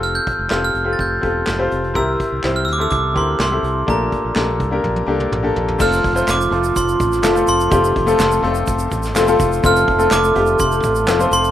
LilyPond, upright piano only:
<<
  \new Staff \with { instrumentName = "Upright piano" } { \time 4/4 \key f \major \tempo 4 = 125 <c' f' g' a'>8. r16 <c' f' g' a'>8 r16 <c' f' g' a'>8 r16 <c' f' g' a'>8 r16 <c' f' g' c''>8 r16 | <c' e' g' bes'>8. r16 <c' e' g' c''>8 r16 <c' e' g' a'>8 r16 <c' e' g' bes'>8 r16 <c' e' g' a'>8 r16 | <a bes d' g'>8. r16 <bes d' g' a'>8 r16 <bes d' g' bes'>8 r16 <bes d' g' a'>8 r16 <bes d' g' a'>8 r16 | <a c' f' a'>8 r16 <a c' f' c''>8 r16 <a c' f' a'>4~ <a c' f' a'>16 r16 <a c' f' a'>16 <a c' f' a'>8 r16 |
<a c' f' g'>8 r16 <a c' f' a'>8 r16 <a c' f' a'>4~ <a c' f' a'>16 r16 <a c' f' a'>16 <a c' f' a'>8 r16 | <a c' f' a'>8 r16 <a c' f' a'>8 r16 <a c' f' g'>4~ <a c' f' g'>16 r16 <a c' f' a'>16 <a c' f' c''>8 r16 | }
  \new Staff \with { instrumentName = "Upright piano" } { \clef bass \time 4/4 \key f \major r1 | c4. r2 r8 | bes,4. r2 r8 | r1 |
r1 | r1 | }
>>